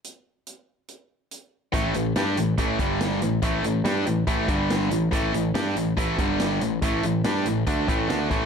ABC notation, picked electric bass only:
X:1
M:4/4
L:1/8
Q:1/4=142
K:Gmix
V:1 name="Picked electric bass" clef=bass
z8 | A,,, A,,, G,, A,,, A,,, G,,,2 A,,, | A,,, A,,, G,, A,,, A,,, G,,,2 A,,, | A,,, A,,, G,, A,,, A,,, G,,,2 A,,, |
A,,, A,,, G,, A,,, D,, A,,, D,, A,,, |]